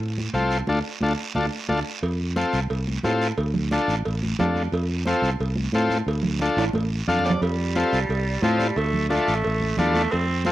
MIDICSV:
0, 0, Header, 1, 5, 480
1, 0, Start_track
1, 0, Key_signature, -1, "major"
1, 0, Tempo, 337268
1, 965, Time_signature, 4, 2, 24, 8
1, 14971, End_track
2, 0, Start_track
2, 0, Title_t, "Transistor combo organ"
2, 0, Program_c, 0, 18
2, 478, Note_on_c, 0, 60, 74
2, 487, Note_on_c, 0, 65, 66
2, 491, Note_on_c, 0, 69, 87
2, 817, Note_off_c, 0, 60, 0
2, 822, Note_off_c, 0, 65, 0
2, 824, Note_off_c, 0, 69, 0
2, 978, Note_on_c, 0, 65, 88
2, 979, Note_on_c, 0, 62, 85
2, 980, Note_on_c, 0, 69, 88
2, 1126, Note_off_c, 0, 65, 0
2, 1127, Note_off_c, 0, 62, 0
2, 1127, Note_off_c, 0, 69, 0
2, 1458, Note_on_c, 0, 62, 82
2, 1459, Note_on_c, 0, 69, 86
2, 1463, Note_on_c, 0, 65, 84
2, 1607, Note_off_c, 0, 62, 0
2, 1607, Note_off_c, 0, 69, 0
2, 1609, Note_off_c, 0, 65, 0
2, 1926, Note_on_c, 0, 62, 85
2, 1928, Note_on_c, 0, 65, 80
2, 1931, Note_on_c, 0, 69, 71
2, 2079, Note_off_c, 0, 62, 0
2, 2080, Note_off_c, 0, 65, 0
2, 2082, Note_off_c, 0, 69, 0
2, 2401, Note_on_c, 0, 65, 88
2, 2402, Note_on_c, 0, 62, 81
2, 2404, Note_on_c, 0, 69, 74
2, 2556, Note_off_c, 0, 65, 0
2, 2557, Note_off_c, 0, 62, 0
2, 2558, Note_off_c, 0, 69, 0
2, 3358, Note_on_c, 0, 60, 71
2, 3369, Note_on_c, 0, 65, 68
2, 3373, Note_on_c, 0, 69, 73
2, 3697, Note_off_c, 0, 60, 0
2, 3702, Note_off_c, 0, 65, 0
2, 3705, Note_off_c, 0, 69, 0
2, 4328, Note_on_c, 0, 60, 69
2, 4333, Note_on_c, 0, 65, 73
2, 4334, Note_on_c, 0, 69, 75
2, 4662, Note_off_c, 0, 60, 0
2, 4664, Note_off_c, 0, 65, 0
2, 4665, Note_off_c, 0, 69, 0
2, 5291, Note_on_c, 0, 62, 69
2, 5297, Note_on_c, 0, 65, 68
2, 5302, Note_on_c, 0, 69, 76
2, 5623, Note_off_c, 0, 62, 0
2, 5626, Note_off_c, 0, 65, 0
2, 5629, Note_off_c, 0, 69, 0
2, 6254, Note_on_c, 0, 62, 68
2, 6257, Note_on_c, 0, 65, 68
2, 6264, Note_on_c, 0, 69, 74
2, 6585, Note_off_c, 0, 62, 0
2, 6586, Note_off_c, 0, 65, 0
2, 6590, Note_off_c, 0, 69, 0
2, 7208, Note_on_c, 0, 60, 76
2, 7218, Note_on_c, 0, 65, 65
2, 7220, Note_on_c, 0, 69, 86
2, 7542, Note_off_c, 0, 60, 0
2, 7547, Note_off_c, 0, 65, 0
2, 7548, Note_off_c, 0, 69, 0
2, 8177, Note_on_c, 0, 60, 75
2, 8182, Note_on_c, 0, 65, 61
2, 8186, Note_on_c, 0, 69, 88
2, 8506, Note_off_c, 0, 60, 0
2, 8509, Note_off_c, 0, 65, 0
2, 8511, Note_off_c, 0, 69, 0
2, 9128, Note_on_c, 0, 62, 74
2, 9132, Note_on_c, 0, 65, 66
2, 9132, Note_on_c, 0, 69, 79
2, 9462, Note_off_c, 0, 62, 0
2, 9464, Note_off_c, 0, 65, 0
2, 9464, Note_off_c, 0, 69, 0
2, 10074, Note_on_c, 0, 62, 73
2, 10083, Note_on_c, 0, 65, 70
2, 10083, Note_on_c, 0, 77, 62
2, 10088, Note_on_c, 0, 69, 83
2, 10307, Note_off_c, 0, 77, 0
2, 10325, Note_on_c, 0, 74, 64
2, 10415, Note_off_c, 0, 62, 0
2, 10420, Note_off_c, 0, 65, 0
2, 10422, Note_off_c, 0, 69, 0
2, 10548, Note_off_c, 0, 74, 0
2, 11041, Note_on_c, 0, 60, 74
2, 11042, Note_on_c, 0, 65, 63
2, 11053, Note_on_c, 0, 69, 89
2, 11379, Note_off_c, 0, 60, 0
2, 11380, Note_off_c, 0, 65, 0
2, 11385, Note_off_c, 0, 69, 0
2, 12001, Note_on_c, 0, 60, 71
2, 12007, Note_on_c, 0, 65, 72
2, 12012, Note_on_c, 0, 69, 90
2, 12340, Note_off_c, 0, 60, 0
2, 12343, Note_off_c, 0, 65, 0
2, 12345, Note_off_c, 0, 69, 0
2, 12947, Note_on_c, 0, 62, 76
2, 12952, Note_on_c, 0, 65, 71
2, 12959, Note_on_c, 0, 69, 85
2, 13293, Note_off_c, 0, 62, 0
2, 13295, Note_off_c, 0, 65, 0
2, 13299, Note_off_c, 0, 69, 0
2, 13923, Note_on_c, 0, 62, 72
2, 13930, Note_on_c, 0, 65, 64
2, 13940, Note_on_c, 0, 69, 88
2, 14262, Note_off_c, 0, 62, 0
2, 14265, Note_off_c, 0, 65, 0
2, 14270, Note_off_c, 0, 69, 0
2, 14883, Note_on_c, 0, 60, 71
2, 14891, Note_on_c, 0, 65, 69
2, 14895, Note_on_c, 0, 69, 89
2, 14971, Note_off_c, 0, 60, 0
2, 14971, Note_off_c, 0, 65, 0
2, 14971, Note_off_c, 0, 69, 0
2, 14971, End_track
3, 0, Start_track
3, 0, Title_t, "Tenor saxophone"
3, 0, Program_c, 1, 66
3, 10549, Note_on_c, 1, 55, 88
3, 11985, Note_on_c, 1, 53, 82
3, 12006, Note_off_c, 1, 55, 0
3, 12222, Note_on_c, 1, 55, 87
3, 12243, Note_off_c, 1, 53, 0
3, 12472, Note_on_c, 1, 57, 92
3, 12493, Note_off_c, 1, 55, 0
3, 12929, Note_off_c, 1, 57, 0
3, 12937, Note_on_c, 1, 57, 95
3, 13910, Note_on_c, 1, 55, 91
3, 13931, Note_off_c, 1, 57, 0
3, 14139, Note_on_c, 1, 57, 102
3, 14161, Note_off_c, 1, 55, 0
3, 14392, Note_on_c, 1, 60, 99
3, 14413, Note_off_c, 1, 57, 0
3, 14868, Note_off_c, 1, 60, 0
3, 14876, Note_on_c, 1, 60, 85
3, 14971, Note_off_c, 1, 60, 0
3, 14971, End_track
4, 0, Start_track
4, 0, Title_t, "Fingered electric bass"
4, 0, Program_c, 2, 33
4, 0, Note_on_c, 2, 45, 75
4, 384, Note_off_c, 2, 45, 0
4, 476, Note_on_c, 2, 36, 94
4, 863, Note_off_c, 2, 36, 0
4, 959, Note_on_c, 2, 38, 86
4, 1141, Note_off_c, 2, 38, 0
4, 1441, Note_on_c, 2, 38, 75
4, 1621, Note_off_c, 2, 38, 0
4, 1926, Note_on_c, 2, 38, 81
4, 2104, Note_off_c, 2, 38, 0
4, 2409, Note_on_c, 2, 38, 79
4, 2586, Note_off_c, 2, 38, 0
4, 2882, Note_on_c, 2, 41, 86
4, 3459, Note_off_c, 2, 41, 0
4, 3604, Note_on_c, 2, 36, 75
4, 3796, Note_off_c, 2, 36, 0
4, 3847, Note_on_c, 2, 36, 75
4, 4230, Note_off_c, 2, 36, 0
4, 4331, Note_on_c, 2, 45, 98
4, 4712, Note_off_c, 2, 45, 0
4, 4804, Note_on_c, 2, 38, 89
4, 5380, Note_off_c, 2, 38, 0
4, 5519, Note_on_c, 2, 33, 90
4, 5713, Note_off_c, 2, 33, 0
4, 5785, Note_on_c, 2, 33, 79
4, 6160, Note_off_c, 2, 33, 0
4, 6267, Note_on_c, 2, 41, 93
4, 6642, Note_off_c, 2, 41, 0
4, 6722, Note_on_c, 2, 41, 93
4, 7299, Note_off_c, 2, 41, 0
4, 7430, Note_on_c, 2, 36, 88
4, 7628, Note_off_c, 2, 36, 0
4, 7690, Note_on_c, 2, 36, 81
4, 8071, Note_off_c, 2, 36, 0
4, 8158, Note_on_c, 2, 45, 95
4, 8544, Note_off_c, 2, 45, 0
4, 8632, Note_on_c, 2, 38, 91
4, 9213, Note_off_c, 2, 38, 0
4, 9346, Note_on_c, 2, 33, 95
4, 9546, Note_off_c, 2, 33, 0
4, 9586, Note_on_c, 2, 33, 80
4, 9977, Note_off_c, 2, 33, 0
4, 10072, Note_on_c, 2, 41, 103
4, 10461, Note_off_c, 2, 41, 0
4, 10556, Note_on_c, 2, 41, 103
4, 11136, Note_off_c, 2, 41, 0
4, 11281, Note_on_c, 2, 36, 92
4, 11475, Note_off_c, 2, 36, 0
4, 11516, Note_on_c, 2, 36, 82
4, 11904, Note_off_c, 2, 36, 0
4, 11989, Note_on_c, 2, 45, 103
4, 12380, Note_off_c, 2, 45, 0
4, 12472, Note_on_c, 2, 38, 99
4, 13054, Note_off_c, 2, 38, 0
4, 13204, Note_on_c, 2, 33, 92
4, 13397, Note_off_c, 2, 33, 0
4, 13457, Note_on_c, 2, 33, 80
4, 13837, Note_off_c, 2, 33, 0
4, 13923, Note_on_c, 2, 40, 107
4, 14309, Note_off_c, 2, 40, 0
4, 14416, Note_on_c, 2, 41, 96
4, 14971, Note_off_c, 2, 41, 0
4, 14971, End_track
5, 0, Start_track
5, 0, Title_t, "Drums"
5, 1, Note_on_c, 9, 74, 76
5, 16, Note_on_c, 9, 63, 32
5, 143, Note_off_c, 9, 74, 0
5, 158, Note_off_c, 9, 63, 0
5, 254, Note_on_c, 9, 63, 70
5, 397, Note_off_c, 9, 63, 0
5, 480, Note_on_c, 9, 73, 59
5, 490, Note_on_c, 9, 63, 74
5, 622, Note_off_c, 9, 73, 0
5, 633, Note_off_c, 9, 63, 0
5, 723, Note_on_c, 9, 73, 70
5, 866, Note_off_c, 9, 73, 0
5, 954, Note_on_c, 9, 63, 86
5, 959, Note_on_c, 9, 74, 80
5, 1096, Note_off_c, 9, 63, 0
5, 1101, Note_off_c, 9, 74, 0
5, 1431, Note_on_c, 9, 63, 78
5, 1443, Note_on_c, 9, 74, 100
5, 1574, Note_off_c, 9, 63, 0
5, 1585, Note_off_c, 9, 74, 0
5, 1919, Note_on_c, 9, 63, 94
5, 1930, Note_on_c, 9, 74, 96
5, 2061, Note_off_c, 9, 63, 0
5, 2072, Note_off_c, 9, 74, 0
5, 2400, Note_on_c, 9, 63, 88
5, 2542, Note_off_c, 9, 63, 0
5, 2889, Note_on_c, 9, 56, 99
5, 3031, Note_off_c, 9, 56, 0
5, 3128, Note_on_c, 9, 63, 37
5, 3271, Note_off_c, 9, 63, 0
5, 3361, Note_on_c, 9, 63, 85
5, 3371, Note_on_c, 9, 73, 72
5, 3504, Note_off_c, 9, 63, 0
5, 3514, Note_off_c, 9, 73, 0
5, 3600, Note_on_c, 9, 73, 64
5, 3742, Note_off_c, 9, 73, 0
5, 3844, Note_on_c, 9, 56, 81
5, 3847, Note_on_c, 9, 63, 31
5, 3853, Note_on_c, 9, 74, 67
5, 3986, Note_off_c, 9, 56, 0
5, 3989, Note_off_c, 9, 63, 0
5, 3996, Note_off_c, 9, 74, 0
5, 4085, Note_on_c, 9, 63, 68
5, 4228, Note_off_c, 9, 63, 0
5, 4318, Note_on_c, 9, 63, 79
5, 4330, Note_on_c, 9, 66, 65
5, 4335, Note_on_c, 9, 73, 62
5, 4460, Note_off_c, 9, 63, 0
5, 4472, Note_off_c, 9, 66, 0
5, 4477, Note_off_c, 9, 73, 0
5, 4576, Note_on_c, 9, 73, 74
5, 4719, Note_off_c, 9, 73, 0
5, 4805, Note_on_c, 9, 56, 97
5, 4813, Note_on_c, 9, 74, 59
5, 4947, Note_off_c, 9, 56, 0
5, 4955, Note_off_c, 9, 74, 0
5, 5039, Note_on_c, 9, 63, 36
5, 5039, Note_on_c, 9, 64, 76
5, 5181, Note_off_c, 9, 63, 0
5, 5181, Note_off_c, 9, 64, 0
5, 5280, Note_on_c, 9, 63, 81
5, 5293, Note_on_c, 9, 73, 81
5, 5422, Note_off_c, 9, 63, 0
5, 5435, Note_off_c, 9, 73, 0
5, 5539, Note_on_c, 9, 73, 71
5, 5681, Note_off_c, 9, 73, 0
5, 5768, Note_on_c, 9, 56, 86
5, 5774, Note_on_c, 9, 74, 72
5, 5775, Note_on_c, 9, 63, 35
5, 5911, Note_off_c, 9, 56, 0
5, 5916, Note_off_c, 9, 74, 0
5, 5917, Note_off_c, 9, 63, 0
5, 6018, Note_on_c, 9, 63, 69
5, 6160, Note_off_c, 9, 63, 0
5, 6248, Note_on_c, 9, 63, 73
5, 6248, Note_on_c, 9, 64, 87
5, 6254, Note_on_c, 9, 73, 62
5, 6259, Note_on_c, 9, 66, 69
5, 6390, Note_off_c, 9, 63, 0
5, 6390, Note_off_c, 9, 64, 0
5, 6397, Note_off_c, 9, 73, 0
5, 6402, Note_off_c, 9, 66, 0
5, 6485, Note_on_c, 9, 63, 72
5, 6489, Note_on_c, 9, 73, 73
5, 6628, Note_off_c, 9, 63, 0
5, 6631, Note_off_c, 9, 73, 0
5, 6726, Note_on_c, 9, 74, 58
5, 6740, Note_on_c, 9, 56, 95
5, 6868, Note_off_c, 9, 74, 0
5, 6882, Note_off_c, 9, 56, 0
5, 6964, Note_on_c, 9, 63, 38
5, 7107, Note_off_c, 9, 63, 0
5, 7195, Note_on_c, 9, 63, 77
5, 7215, Note_on_c, 9, 73, 79
5, 7337, Note_off_c, 9, 63, 0
5, 7358, Note_off_c, 9, 73, 0
5, 7456, Note_on_c, 9, 73, 64
5, 7598, Note_off_c, 9, 73, 0
5, 7677, Note_on_c, 9, 63, 35
5, 7693, Note_on_c, 9, 74, 67
5, 7696, Note_on_c, 9, 56, 84
5, 7820, Note_off_c, 9, 63, 0
5, 7836, Note_off_c, 9, 74, 0
5, 7838, Note_off_c, 9, 56, 0
5, 7909, Note_on_c, 9, 63, 69
5, 8052, Note_off_c, 9, 63, 0
5, 8147, Note_on_c, 9, 63, 78
5, 8168, Note_on_c, 9, 73, 69
5, 8289, Note_off_c, 9, 63, 0
5, 8310, Note_off_c, 9, 73, 0
5, 8389, Note_on_c, 9, 63, 69
5, 8408, Note_on_c, 9, 73, 65
5, 8532, Note_off_c, 9, 63, 0
5, 8551, Note_off_c, 9, 73, 0
5, 8654, Note_on_c, 9, 56, 95
5, 8656, Note_on_c, 9, 74, 67
5, 8796, Note_off_c, 9, 56, 0
5, 8799, Note_off_c, 9, 74, 0
5, 8866, Note_on_c, 9, 63, 37
5, 8866, Note_on_c, 9, 64, 82
5, 9008, Note_off_c, 9, 63, 0
5, 9008, Note_off_c, 9, 64, 0
5, 9104, Note_on_c, 9, 63, 82
5, 9124, Note_on_c, 9, 73, 71
5, 9247, Note_off_c, 9, 63, 0
5, 9267, Note_off_c, 9, 73, 0
5, 9368, Note_on_c, 9, 65, 86
5, 9372, Note_on_c, 9, 73, 67
5, 9510, Note_off_c, 9, 65, 0
5, 9514, Note_off_c, 9, 73, 0
5, 9584, Note_on_c, 9, 63, 96
5, 9605, Note_on_c, 9, 56, 91
5, 9612, Note_on_c, 9, 74, 71
5, 9726, Note_off_c, 9, 63, 0
5, 9748, Note_off_c, 9, 56, 0
5, 9754, Note_off_c, 9, 74, 0
5, 10072, Note_on_c, 9, 64, 71
5, 10089, Note_on_c, 9, 73, 62
5, 10215, Note_off_c, 9, 64, 0
5, 10231, Note_off_c, 9, 73, 0
5, 10235, Note_on_c, 9, 64, 83
5, 10318, Note_on_c, 9, 73, 66
5, 10329, Note_on_c, 9, 66, 80
5, 10377, Note_off_c, 9, 64, 0
5, 10393, Note_on_c, 9, 64, 88
5, 10461, Note_off_c, 9, 73, 0
5, 10471, Note_off_c, 9, 66, 0
5, 10535, Note_off_c, 9, 64, 0
5, 10565, Note_on_c, 9, 74, 65
5, 10573, Note_on_c, 9, 56, 104
5, 10708, Note_off_c, 9, 74, 0
5, 10716, Note_off_c, 9, 56, 0
5, 10798, Note_on_c, 9, 63, 35
5, 10941, Note_off_c, 9, 63, 0
5, 11035, Note_on_c, 9, 73, 73
5, 11039, Note_on_c, 9, 63, 81
5, 11178, Note_off_c, 9, 73, 0
5, 11181, Note_off_c, 9, 63, 0
5, 11288, Note_on_c, 9, 73, 69
5, 11430, Note_off_c, 9, 73, 0
5, 11517, Note_on_c, 9, 63, 30
5, 11528, Note_on_c, 9, 74, 69
5, 11531, Note_on_c, 9, 56, 84
5, 11659, Note_off_c, 9, 63, 0
5, 11670, Note_off_c, 9, 74, 0
5, 11674, Note_off_c, 9, 56, 0
5, 11991, Note_on_c, 9, 63, 83
5, 11998, Note_on_c, 9, 73, 61
5, 12134, Note_off_c, 9, 63, 0
5, 12140, Note_off_c, 9, 73, 0
5, 12235, Note_on_c, 9, 73, 67
5, 12240, Note_on_c, 9, 63, 72
5, 12378, Note_off_c, 9, 73, 0
5, 12383, Note_off_c, 9, 63, 0
5, 12471, Note_on_c, 9, 74, 62
5, 12488, Note_on_c, 9, 56, 100
5, 12613, Note_off_c, 9, 74, 0
5, 12631, Note_off_c, 9, 56, 0
5, 12712, Note_on_c, 9, 63, 39
5, 12712, Note_on_c, 9, 64, 68
5, 12855, Note_off_c, 9, 63, 0
5, 12855, Note_off_c, 9, 64, 0
5, 12957, Note_on_c, 9, 63, 88
5, 12965, Note_on_c, 9, 73, 80
5, 13099, Note_off_c, 9, 63, 0
5, 13107, Note_off_c, 9, 73, 0
5, 13204, Note_on_c, 9, 73, 72
5, 13346, Note_off_c, 9, 73, 0
5, 13435, Note_on_c, 9, 63, 34
5, 13438, Note_on_c, 9, 56, 84
5, 13443, Note_on_c, 9, 74, 68
5, 13577, Note_off_c, 9, 63, 0
5, 13581, Note_off_c, 9, 56, 0
5, 13585, Note_off_c, 9, 74, 0
5, 13668, Note_on_c, 9, 63, 65
5, 13811, Note_off_c, 9, 63, 0
5, 13904, Note_on_c, 9, 63, 70
5, 13904, Note_on_c, 9, 64, 72
5, 13914, Note_on_c, 9, 73, 66
5, 14046, Note_off_c, 9, 63, 0
5, 14046, Note_off_c, 9, 64, 0
5, 14056, Note_off_c, 9, 73, 0
5, 14153, Note_on_c, 9, 63, 73
5, 14159, Note_on_c, 9, 73, 71
5, 14295, Note_off_c, 9, 63, 0
5, 14302, Note_off_c, 9, 73, 0
5, 14394, Note_on_c, 9, 74, 63
5, 14404, Note_on_c, 9, 56, 100
5, 14536, Note_off_c, 9, 74, 0
5, 14547, Note_off_c, 9, 56, 0
5, 14632, Note_on_c, 9, 63, 38
5, 14774, Note_off_c, 9, 63, 0
5, 14868, Note_on_c, 9, 63, 88
5, 14882, Note_on_c, 9, 73, 73
5, 14971, Note_off_c, 9, 63, 0
5, 14971, Note_off_c, 9, 73, 0
5, 14971, End_track
0, 0, End_of_file